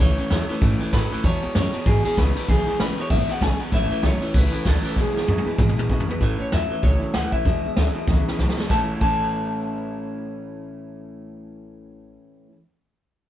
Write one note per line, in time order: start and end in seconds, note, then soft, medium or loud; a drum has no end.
0.00 0.17 C#2 medium
0.00 0.18 A2 medium
0.00 0.16 A2 medium
0.00 0.16 E3 loud
0.00 0.18 E3 medium
0.00 0.18 A3 medium
0.00 0.17 C#4 loud
0.00 0.16 E4 medium
0.00 0.58 C#5 loud
0.17 0.29 A2 medium
0.17 0.29 E3 medium
0.17 0.30 A3 soft
0.17 0.31 C#4 medium
0.17 0.30 E4 medium
0.17 ride medium
0.30 0.48 E2 loud
0.30 0.47 A2 medium
0.30 0.48 E3 medium
0.30 0.48 F#3 loud
0.30 0.49 A3 medium
0.30 0.49 C#4 medium
0.30 0.47 E4 medium
0.30 snare loud
0.30 ride medium
0.49 0.61 A2 medium
0.49 0.61 E3 medium
0.49 0.60 A3 medium
0.49 0.61 C#4 medium
0.49 0.61 E4 medium
0.49 muted upright bass stroke medium
0.49 ride medium
0.61 0.79 G#2 medium
0.61 0.79 A2 loud
0.61 0.78 A2 medium
0.61 0.79 E3 loud
0.61 0.78 E3 medium
0.61 0.79 A3 loud
0.61 0.80 C#4 loud
0.61 0.79 E4 medium
0.61 kick loud
0.61 ride medium
0.79 0.92 A2 medium
0.79 0.92 E3 medium
0.79 0.92 A3 medium
0.79 0.93 C#4 medium
0.79 0.93 E4 medium
0.79 muted upright bass stroke medium
0.79 ride medium
0.93 1.10 A2 medium
0.93 1.09 A2 medium
0.93 1.11 E3 medium
0.93 1.10 F#3 medium
0.93 1.11 A3 medium
0.93 1.11 C#4 medium
0.93 1.10 E4 medium
0.93 1.25 B4 medium
0.93 kick medium
0.93 snare loud
0.93 ride medium
1.11 1.23 A2 medium
1.11 1.23 E3 loud
1.11 1.24 A3 medium
1.11 1.24 C#4 soft
1.11 1.24 E4 medium
1.11 muted upright bass stroke medium
1.11 ride medium
1.23 1.42 E2 medium
1.23 1.41 E2 medium
1.23 1.40 E2 medium
1.23 1.42 B2 medium
1.23 1.40 B2 loud
1.23 1.42 E3 medium
1.23 1.41 G#3 medium
1.23 1.41 B3 medium
1.23 1.39 E4 medium
1.23 1.54 C#5 loud
1.23 kick medium
1.23 ride medium
1.40 1.54 E2 medium
1.40 1.54 B2 medium
1.40 1.53 E3 soft
1.40 1.55 G#3 soft
1.40 1.55 B3 medium
1.40 1.54 E4 medium
1.40 muted upright bass stroke medium
1.40 ride medium
1.55 1.71 E2 medium
1.55 1.72 F#2 loud
1.55 1.72 C#3 medium
1.55 1.73 E3 medium
1.55 1.73 G#3 medium
1.55 1.73 B3 medium
1.55 1.72 E4 medium
1.55 1.88 C#5 medium
1.55 snare loud
1.55 ride medium
1.73 1.84 E2 medium
1.73 1.85 B2 medium
1.73 1.85 E3 soft
1.73 1.86 G#3 soft
1.73 1.87 B3 medium
1.73 1.86 E4 medium
1.73 muted upright bass stroke medium
1.73 ride medium
1.86 2.04 E2 medium
1.86 2.02 E2 medium
1.86 2.03 G#2 medium
1.86 2.04 B2 medium
1.86 2.03 B2 medium
1.86 2.04 E3 medium
1.86 2.05 G#3 medium
1.86 2.05 B3 medium
1.86 2.03 E4 medium
1.86 2.03 G#4 medium
1.86 kick loud
1.86 ride medium
2.04 2.16 E2 medium
2.04 2.16 B2 medium
2.04 2.17 E3 soft
2.04 2.18 G#3 medium
2.04 2.18 B3 medium
2.04 2.17 E4 medium
2.04 2.18 G#4 medium
2.04 muted upright bass stroke medium
2.04 ride medium
2.17 2.35 C#2 medium
2.17 2.33 E2 medium
2.17 2.34 C#3 medium
2.17 2.36 E3 medium
2.17 2.36 G#3 medium
2.17 2.35 B3 medium
2.17 2.34 E4 medium
2.17 2.49 B4 loud
2.17 kick medium
2.17 snare loud
2.17 ride medium
2.35 2.47 E2 medium
2.35 2.47 B2 loud
2.35 2.48 E3 soft
2.35 2.48 G#3 soft
2.35 2.49 B3 soft
2.35 2.48 E4 medium
2.35 ride medium
2.48 2.65 B1 medium
2.48 2.66 E2 medium
2.48 2.65 E2 medium
2.48 2.67 B2 medium
2.48 2.65 B2 loud
2.48 2.67 E3 loud
2.48 2.67 G#3 medium
2.48 2.66 B3 medium
2.48 2.65 E4 loud
2.48 2.81 G#4 loud
2.48 kick loud
2.48 ride medium
2.66 2.79 E2 medium
2.66 2.79 B2 medium
2.66 2.78 E3 medium
2.66 2.80 G#3 soft
2.66 2.79 B3 medium
2.66 2.79 E4 medium
2.66 muted upright bass stroke medium
2.66 ride medium
2.78 2.95 A1 loud
2.78 2.96 E2 medium
2.78 2.96 C#3 loud
2.78 2.97 E3 medium
2.78 2.98 G#3 medium
2.78 2.98 B3 medium
2.78 3.01 B4 loud
2.78 snare loud
2.78 ride medium
2.82 2.97 E4 medium
2.96 3.09 E2 medium
2.96 3.10 B2 medium
2.96 3.11 B3 medium
2.96 3.11 E4 medium
2.96 muted upright bass stroke soft
2.96 ride medium
3.00 3.11 E3 medium
3.00 3.11 G#3 medium
3.00 3.10 C#5 loud
3.10 3.26 G#1 loud
3.10 3.27 E2 medium
3.10 3.29 E2 medium
3.10 3.27 B2 medium
3.10 3.29 B2 medium
3.10 3.29 E3 loud
3.10 3.29 G#3 medium
3.10 3.28 B3 loud
3.10 3.27 E4 medium
3.10 3.30 E5 loud
3.10 kick loud
3.10 ride medium
3.28 3.40 E2 medium
3.28 3.40 B2 medium
3.28 3.41 E3 medium
3.28 3.41 G#3 medium
3.28 3.42 B3 medium
3.28 3.41 E4 medium
3.28 3.42 F#5 loud
3.28 ride medium
3.41 3.58 B1 loud
3.41 3.58 E2 medium
3.41 3.58 C#3 medium
3.41 3.60 E3 medium
3.41 3.59 G#3 medium
3.41 3.59 B3 medium
3.41 3.58 E4 medium
3.41 3.60 G#5 loud
3.41 kick medium
3.41 snare loud
3.41 ride medium
3.59 3.71 E2 medium
3.59 3.71 B2 medium
3.59 3.71 E3 medium
3.59 3.72 G#3 medium
3.59 3.72 B3 medium
3.59 3.72 E4 medium
3.59 3.73 F#5 loud
3.59 muted upright bass stroke medium
3.59 ride medium
3.72 3.89 A1 medium
3.72 3.90 A2 medium
3.72 3.88 A2 medium
3.72 3.90 E3 medium
3.72 3.89 E3 loud
3.72 3.90 A3 loud
3.72 3.90 C#4 loud
3.72 3.88 E4 loud
3.72 4.05 E5 loud
3.72 kick loud
3.72 ride medium
3.89 4.01 A2 medium
3.89 4.02 E3 medium
3.89 4.03 A3 medium
3.89 4.04 C#4 medium
3.89 4.03 E4 medium
3.89 ride medium
4.03 4.21 B1 medium
4.03 4.19 A2 medium
4.03 4.21 E3 medium
4.03 4.20 F#3 medium
4.03 4.21 A3 medium
4.03 4.20 C#4 medium
4.03 4.18 E4 medium
4.03 4.37 C#5 loud
4.03 snare loud
4.03 ride medium
4.20 4.33 A2 medium
4.20 4.33 E3 medium
4.20 4.33 A3 soft
4.20 4.34 C#4 medium
4.20 4.33 E4 medium
4.20 muted upright bass stroke medium
4.20 ride medium
4.34 4.51 C#2 medium
4.34 4.52 A2 medium
4.34 4.50 A2 medium
4.34 4.52 E3 medium
4.34 4.51 E3 loud
4.34 4.52 A3 medium
4.34 4.52 C#4 medium
4.34 4.50 E4 medium
4.34 kick loud
4.34 ride medium
4.38 4.68 B4 loud
4.51 4.64 A2 medium
4.51 4.64 E3 medium
4.51 4.65 A3 soft
4.51 4.65 C#4 medium
4.51 4.65 E4 medium
4.51 ride medium
4.64 4.83 D2 medium
4.64 4.82 A2 medium
4.64 4.83 E3 medium
4.64 4.82 F#3 loud
4.64 4.84 A3 medium
4.64 4.83 C#4 medium
4.64 4.81 E4 medium
4.64 4.98 A4 medium
4.64 kick medium
4.64 snare loud
4.64 ride loud
4.82 4.95 A2 medium
4.82 4.96 E3 medium
4.82 4.96 A3 soft
4.82 4.97 C#4 medium
4.82 4.96 E4 medium
4.82 muted upright bass stroke medium
4.82 ride medium
4.95 5.14 E2 medium
4.95 5.13 E2 medium
4.95 5.13 E2 loud
4.95 5.14 B2 medium
4.95 5.13 B2 loud
4.95 5.14 E3 medium
4.95 5.13 G#3 medium
4.95 5.13 B3 loud
4.95 5.11 E4 medium
4.95 5.87 G#4 medium
4.95 kick medium
4.95 snare medium
5.12 5.27 E2 medium
5.12 5.25 E3 soft
5.12 5.27 G#3 soft
5.12 5.27 B3 medium
5.12 5.26 E4 medium
5.12 muted upright bass stroke soft
5.16 5.27 B2 medium
5.16 snare medium
5.27 5.44 E2 medium
5.27 5.45 F#2 loud
5.27 5.45 C#3 loud
5.27 5.45 E3 medium
5.27 5.46 G#3 medium
5.27 5.45 B3 medium
5.27 5.43 E4 medium
5.27 high tom medium
5.38 high tom medium
5.45 5.58 E2 medium
5.45 5.58 B2 medium
5.45 5.58 E3 medium
5.45 5.59 G#3 medium
5.45 5.59 B3 medium
5.45 5.58 E4 medium
5.45 muted upright bass stroke medium
5.58 5.77 E2 medium
5.58 5.75 E2 medium
5.58 5.76 G#2 loud
5.58 5.77 B2 loud
5.58 5.75 B2 medium
5.58 5.77 E3 loud
5.58 5.77 G#3 loud
5.58 5.78 B3 loud
5.58 5.76 E4 medium
5.58 kick loud
5.58 mid tom loud
5.69 mid tom medium
5.77 5.89 E2 medium
5.77 5.89 B2 medium
5.77 5.89 E3 medium
5.77 5.91 G#3 medium
5.77 5.91 B3 medium
5.77 5.90 E4 medium
5.77 muted upright bass stroke medium
5.77 mid tom loud
5.90 6.06 E2 medium
5.90 6.07 B2 loud
5.90 6.07 C#3 loud
5.90 6.08 E3 medium
5.90 6.09 G#3 medium
5.90 6.08 B3 medium
5.90 6.07 E4 medium
5.90 kick medium
6.00 floor tom loud
6.08 6.20 E2 medium
6.08 6.20 B2 medium
6.08 6.21 E3 soft
6.08 6.22 G#3 medium
6.08 6.21 B3 medium
6.08 6.21 E4 medium
6.08 6.41 B4 medium
6.08 muted upright bass stroke medium
6.08 floor tom medium
6.21 6.38 A2 medium
6.21 6.50 A2 loud
6.21 6.39 A2 medium
6.21 6.39 E3 medium
6.21 6.50 E3 loud
6.21 6.40 A3 medium
6.21 6.38 C#4 medium
6.21 6.37 E4 medium
6.21 kick medium
6.21 closed hi-hat medium
6.38 6.52 A3 soft
6.38 6.52 C#4 medium
6.38 6.52 E4 medium
6.38 6.54 C#5 medium
6.38 muted upright bass stroke medium
6.38 closed hi-hat medium
6.52 6.70 E2 loud
6.52 6.69 A2 medium
6.52 6.70 E3 medium
6.52 6.69 F#3 medium
6.52 6.70 A3 medium
6.52 6.69 C#4 medium
6.52 6.68 E4 medium
6.52 6.82 E5 medium
6.52 snare loud
6.52 closed hi-hat medium
6.69 6.82 A2 medium
6.69 6.82 E3 medium
6.69 6.82 A3 soft
6.69 6.82 C#4 medium
6.69 6.83 E4 medium
6.69 muted upright bass stroke medium
6.69 closed hi-hat medium
6.82 7.00 C#2 medium
6.82 7.01 A2 medium
6.82 7.12 A2 medium
6.82 7.01 E3 medium
6.82 7.12 F#3 medium
6.82 7.01 A3 medium
6.82 7.00 C#4 medium
6.82 6.98 E4 medium
6.82 7.16 C#5 loud
6.82 kick loud
6.82 closed hi-hat loud
6.99 7.13 A3 soft
6.99 7.14 C#4 medium
6.99 7.13 E4 medium
6.99 closed hi-hat medium
7.13 7.31 D2 medium
7.13 7.31 A2 medium
7.13 7.32 E3 medium
7.13 7.31 E3 medium
7.13 7.33 A3 medium
7.13 7.33 C#4 medium
7.13 7.31 E4 medium
7.13 7.32 F#5 loud
7.13 snare loud
7.13 closed hi-hat medium
7.32 7.45 A2 medium
7.32 7.45 E3 medium
7.32 7.46 A3 soft
7.32 7.46 C#4 soft
7.32 7.45 E4 medium
7.32 8.35 E5 loud
7.32 kick medium
7.32 closed hi-hat medium
7.45 7.63 E2 medium
7.45 7.64 B2 medium
7.45 7.74 B2 loud
7.45 7.64 E3 medium
7.45 7.64 G#3 medium
7.45 7.64 B3 medium
7.45 7.63 E4 medium
7.45 kick medium
7.45 closed hi-hat medium
7.64 7.76 E3 soft
7.64 7.77 G#3 medium
7.64 7.78 B3 medium
7.64 7.77 E4 medium
7.64 muted upright bass stroke medium
7.64 closed hi-hat medium
7.76 7.94 D2 loud
7.76 7.92 E2 loud
7.76 7.93 C#3 medium
7.76 7.95 E3 medium
7.76 7.96 G#3 medium
7.76 7.95 B3 medium
7.76 7.95 E4 medium
7.76 snare loud
7.76 closed hi-hat medium
7.94 8.06 E2 medium
7.94 8.07 B2 medium
7.94 8.09 B3 medium
7.94 8.08 E4 medium
7.94 closed hi-hat medium
7.98 8.08 E3 medium
7.98 8.08 G#3 medium
8.07 8.26 C#2 medium
8.07 8.36 E2 medium
8.07 8.26 E2 medium
8.07 8.27 B2 loud
8.07 8.37 C#3 medium
8.07 8.27 E3 loud
8.07 8.27 G#3 medium
8.07 8.26 B3 medium
8.07 8.25 E4 medium
8.07 kick loud
8.07 snare medium
8.26 8.38 E3 medium
8.26 8.39 G#3 medium
8.26 8.40 B3 medium
8.26 8.39 E4 medium
8.26 muted upright bass stroke medium
8.26 snare medium
8.39 8.56 B1 medium
8.39 8.56 E2 medium
8.39 8.56 B2 medium
8.39 8.57 E3 medium
8.39 8.57 G#3 medium
8.39 8.56 B3 medium
8.39 8.55 E4 medium
8.39 snare medium
8.49 snare medium
8.56 8.67 E2 medium
8.56 8.69 B2 medium
8.56 8.70 E3 soft
8.56 8.71 G#3 medium
8.56 8.71 B3 medium
8.56 8.70 E4 medium
8.56 muted upright bass stroke medium
8.56 snare medium
8.66 8.96 A2 medium
8.66 9.00 A2 medium
8.66 9.01 E3 loud
8.66 9.02 A3 loud
8.70 8.80 A1 medium
8.70 9.01 E3 medium
8.70 9.03 C#4 loud
8.70 9.03 E4 loud
8.70 8.81 A5 medium
8.70 kick loud
8.70 snare medium
8.75 9.05 A3 medium
8.75 9.08 C#4 loud
8.82 9.12 E4 medium
8.97 12.47 A2 medium
8.97 12.50 A2 medium
9.01 12.16 A1 loud
9.01 12.51 E3 medium
9.01 12.52 E3 medium
9.01 12.52 A3 loud
9.01 12.53 C#4 loud
9.01 12.54 E4 loud
9.01 12.16 A5 medium
9.01 kick loud
9.01 crash medium
9.05 12.55 A3 medium
9.05 12.59 C#4 medium
9.12 12.62 E4 medium